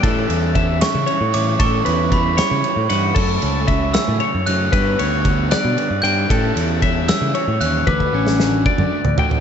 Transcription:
<<
  \new Staff \with { instrumentName = "Glockenspiel" } { \time 6/8 \key a \mixolydian \tempo 4. = 76 r4. cis'''4 d'''8 | cis'''4 b''8 cis'''4 r8 | r4. e'''4 fis'''8 | r4. fis'''4 g'''8 |
r4. e'''4 fis'''8 | d'''2 r4 | }
  \new Staff \with { instrumentName = "Clean electric guitar" } { \time 6/8 \key a \mixolydian a'4 e''4 cis''4 | a'8 b'4 cis''4 fis''8 | a'4 e''4 cis''4 | b'8 cis''4 d''4 g''8 |
a'4 e''4 cis''4 | b'8 cis'4 d''4 g''8 | }
  \new Staff \with { instrumentName = "Overdriven electric guitar" } { \time 6/8 \key a \mixolydian <e g cis' e'>8 <e g cis' e'>8 <e g cis' e'>8 <e g cis' e'>8 r8 <e g cis' e'>8 | <e g cis' e'>8 <e g cis' e'>8 <e g cis' e'>8 <e g cis' e'>8 r8 <e g cis' e'>8 | <cis fis a cis'>8 <cis fis a cis'>8 <cis fis a cis'>8 <cis fis a cis'>8 r8 <cis fis a cis'>8 | <d g b d'>8 <d g b d'>8 <d g b d'>8 <d g b d'>8 r8 <d g b d'>8 |
<e g cis' e'>8 <e g cis' e'>8 <e g cis' e'>8 <e g cis' e'>8 r8 <e g cis' e'>8 | <d a d' fis'>8 <d a d' fis'>8 <d a d' fis'>8 <d a d' fis'>8 r8 <d a d' fis'>8 | }
  \new Staff \with { instrumentName = "Picked electric bass" } { \clef bass \time 6/8 \key a \mixolydian a,8 e,4~ e,16 cis16 r16 a,16 a,8 | a,8 e,4~ e,16 cis16 r16 a,16 g,8 | fis,8 cis,4~ cis,16 a,16 r16 fis,16 fis,8 | g,8 d,4~ d,16 b,16 r16 g,16 g,8 |
a,8 e,4~ e,16 cis16 r16 a,16 ees,8 | d,8 a,,4~ a,,16 fis,16 r16 d,16 d,8 | }
  \new DrumStaff \with { instrumentName = "Drums" } \drummode { \time 6/8 <bd cymr>8 cymr8 <bd cymr>8 <cymr sn>8 cymr8 cymr8 | <bd cymr>8 cymr8 <bd cymr>8 <cymr sn>8 cymr8 cymr8 | <cymc bd>8 cymr8 <bd cymr>8 <cymr sn>8 cymr8 cymr8 | <bd cymr>8 cymr8 <bd cymr>8 <cymr sn>8 cymr8 cymr8 |
<bd cymr>8 cymr8 <bd cymr>8 <cymr sn>8 cymr8 cymr8 | <bd tommh>16 bd8 sn16 sn8 bd16 toml8 tomfh16 tomfh16 tomfh16 | }
>>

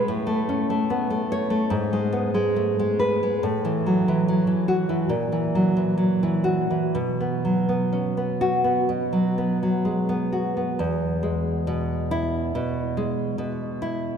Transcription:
\new Staff \with { instrumentName = "Nylon-string guitar" } { \clef bass \time 4/4 \key e \major \tempo 4 = 69 << { r4. cis''8 r4. b'8 | r4. fis'8 r4. fis'8 | r4. fis'8 r2 | r4. e'4 r4. | } \\ { a,16 a16 cis'16 a16 b16 a8 a16 gis,16 gis16 b16 gis16 a16 gis8 gis16 | a,16 e16 fis16 e16 fis16 e8 e16 ais,16 e16 fis16 e16 fis16 e8 e16 | b,16 b16 fis16 b16 cis'16 b8 b16 b,16 fis16 b16 fis16 gis16 b16 fis'16 b16 | e,8 gis8 b,4 b,8 gis8 b,8 e'8 | } >> }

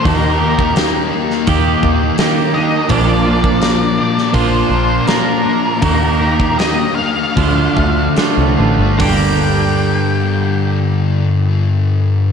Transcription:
<<
  \new Staff \with { instrumentName = "Lead electric guitar" } { \time 4/4 \key g \minor \tempo 4 = 80 bes'4 r2 r8 ees''8 | d''2 c''4 bes'4 | bes'4 ees''8 f''4. r4 | g''1 | }
  \new Staff \with { instrumentName = "Clean electric guitar" } { \time 4/4 \key g \minor <ees bes g'>8 <bes g'>4. <ees bes g'>4 <ees bes g'>8 <bes d' g'>8 | <bes, f bes d' f'>8 <bes d' f'>4. <bes, f bes d' f'>4 <f bes d' f'>8 <bes d' f'>8 | <ees bes g'>8 <bes g'>4. <d a d' f'>4 <d a d' f'>8 <a d' f'>8 | <g, d g bes d' g'>1 | }
  \new Staff \with { instrumentName = "Clean electric guitar" } { \time 4/4 \key g \minor ees8 ees8 bes4 g'4 bes8 ees8 | f8 f8 bes8 d'8 f'8 d'8 bes8 f8 | bes8 bes8 bes4 f8 a8 f8 f8 | <bes d' g'>1 | }
  \new Staff \with { instrumentName = "Distorted electric guitar" } { \time 4/4 \key g \minor <ees bes ees'>8 <bes ees'>8 <ees bes ees'>8 <bes ees'>8 <ees bes ees'>8 <bes ees'>8 <ees bes ees'>8 <bes ees'>8 | <bes, f bes>8 <f bes>8 <bes, f bes>8 <f bes>8 <bes, f bes>8 <f bes>8 <bes, f bes>8 <f bes>8 | <ees bes ees'>8 <bes ees'>8 <ees bes ees'>8 <bes ees'>8 <d a d'>8 <a d'>8 <d a d'>8 <a d'>8 | <g, d g>1 | }
  \new Staff \with { instrumentName = "Picked electric bass" } { \clef bass \time 4/4 \key g \minor ees,2 ees,8 ees,8 r4 | bes,,2 bes,,8 bes,,8 r4 | ees,2 d,8 d,8 r16 c,16 a,,16 g,,16 | g,,1 | }
  \new DrumStaff \with { instrumentName = "Drums" } \drummode { \time 4/4 <hho bd>8. bd16 <hho sn>8. sn16 <hho bd>8 bd8 <hho sn>4 | <hho bd>8. bd16 <hho sn>8. sn16 <hho bd>4 <hho sn>4 | <hho bd>8. bd16 <hho sn>4 <hho bd>8 bd8 <hho sn>4 | <hho bd tomfh>4 r4 r4 r4 | }
>>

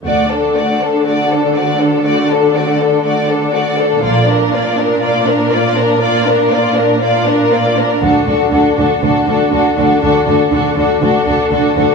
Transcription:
<<
  \new Staff \with { instrumentName = "Violin section" } { \time 4/4 \key d \major \tempo 4 = 120 d''8 a'8 d''8 a'8 d''8 a'8 d''8 a'8 | d''8 a'8 d''8 a'8 d''8 a'8 d''8 a'8 | d''8 bes'8 d''8 bes'8 d''8 bes'8 d''8 bes'8 | d''8 bes'8 d''8 bes'8 d''8 bes'8 d''8 bes'8 |
a'8 a'8 a'8 a'8 a'8 a'8 a'8 a'8 | a'8 a'8 a'8 a'8 a'8 a'8 a'8 a'8 | }
  \new Staff \with { instrumentName = "Violin section" } { \time 4/4 \key d \major fis'8 a'8 fis'8 a'8 fis'8 a'8 fis'8 a'8 | fis'8 a'8 fis'8 a'8 fis'8 a'8 fis'8 a'8 | f'8 d'8 f'8 d'8 f'8 d'8 f'8 d'8 | f'8 d'8 f'8 d'8 f'8 d'8 f'8 d'8 |
fis'8 fis'8 fis'8 fis'8 fis'8 fis'8 fis'8 fis'8 | fis'8 fis'8 fis'8 fis'8 fis'8 fis'8 fis'8 fis'8 | }
  \new Staff \with { instrumentName = "Viola section" } { \time 4/4 \key d \major a8 d'8 a8 d'8 a8 d'8 a8 d'8 | a8 d'8 a8 d'8 a8 d'8 a8 d'8 | bes8 d'8 bes8 d'8 bes8 d'8 bes8 d'8 | bes8 d'8 bes8 d'8 bes8 d'8 bes8 d'8 |
d'8 d'8 d'8 d'8 d'8 d'8 d'8 d'8 | d'8 d'8 d'8 d'8 d'8 d'8 d'8 d'8 | }
  \new Staff \with { instrumentName = "Cello section" } { \clef bass \time 4/4 \key d \major d1~ | d1 | bes,1~ | bes,2.~ bes,8 r8 |
d8 d8 d8 d8 d8 d8 d8 d8 | d8 d8 d8 d8 d8 d8 d8 d8 | }
  \new Staff \with { instrumentName = "Double bass section" } { \clef bass \time 4/4 \key d \major d,4 r2. | r1 | bes,,4 r2. | r1 |
d,8 d,8 d,8 d,8 d,8 d,8 d,8 d,8 | d,8 d,8 d,8 d,8 d,8 d,8 d,8 d,8 | }
>>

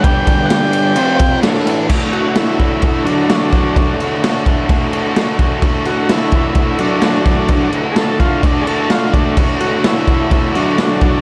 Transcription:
<<
  \new Staff \with { instrumentName = "Transistor combo organ" } { \time 4/4 \key d \major \tempo 4 = 128 <d' g' d''>2 <c' f' c''>4 <d' fis' a'>4 | <d' fis' a'>1~ | <d' fis' a'>1 | <d' fis' a'>1~ |
<d' fis' a'>1 | <d' fis' a'>1 | }
  \new Staff \with { instrumentName = "Transistor combo organ" } { \time 4/4 \key d \major g''4 <fis'' g''>2 r4 | r8 fis'8 e'4 e'8 <fis d'>4.~ | <fis d'>8 r2. r8 | r8 fis'8 e'4 e'8 <fis d'>4.~ |
<fis d'>8 r8 <gis' a'>8 f'8 d'8 <gis' a'>8 f'8 d'8 | r8 fis'8 e'4 e'8 <fis d'>4. | }
  \new Staff \with { instrumentName = "Overdriven electric guitar" } { \clef bass \time 4/4 \key d \major <g, d g>2 <f, c f>4 <d, a, d>8 <a, e a>8 | <d, a, d a fis'>8 <d a fis'>8 <a, d a fis'>8 <d, a, d a fis'>8 <a, d a fis'>8 <d, a, d a fis'>8 <a, d a fis'>8 <d a fis'>8 | <d, a, d a fis'>8 <d a fis'>8 <a, d a fis'>8 <d, a, d a fis'>8 <a, d a fis'>8 <d, a, d a fis'>8 <a, d a fis'>8 <d a fis'>8 | <d, a, d a fis'>8 <d a fis'>8 <a, d a fis'>8 <d, a, d a fis'>8 <a, d a fis'>8 <d, a, d a fis'>8 <a, d a fis'>8 <d a fis'>8 |
<d, a, d a fis'>8 <d a fis'>8 <a, d a fis'>8 <d, a, d a fis'>8 <a, d a fis'>8 <d, a, d a fis'>8 <a, d a fis'>8 <d a fis'>8 | <d, a, d a fis'>8 <d a fis'>8 <a, d a fis'>8 <d, a, d a fis'>8 <a, d a fis'>8 <d, a, d a fis'>8 <a, d a fis'>8 <d a fis'>8 | }
  \new DrumStaff \with { instrumentName = "Drums" } \drummode { \time 4/4 <bd cymr>8 <bd cymr>8 <cymr sn>8 cymr8 cymr8 <bd cymr>8 <cymr sn>16 sn16 cymr8 | <cymc bd>8 cymc8 <cymc sn>8 <cymc bd>8 <cymc bd>8 cymc8 <cymc sn>8 <cymc bd>8 | <cymc bd>8 cymc8 <cymc sn>8 <cymc bd>8 <cymc bd>8 cymc8 <cymc sn>8 <cymc bd>8 | <cymc bd>8 cymc8 <cymc sn>8 <cymc bd>8 <cymc bd>8 cymc8 <cymc sn>8 <cymc bd>8 |
<cymc bd>8 cymc8 <cymc sn>8 <cymc bd>8 <cymc bd>8 cymc8 <cymc sn>8 <cymc bd>8 | <cymc bd>8 cymc8 <cymc sn>8 <cymc bd>8 <cymc bd>8 cymc8 <cymc sn>8 <cymc bd>8 | }
>>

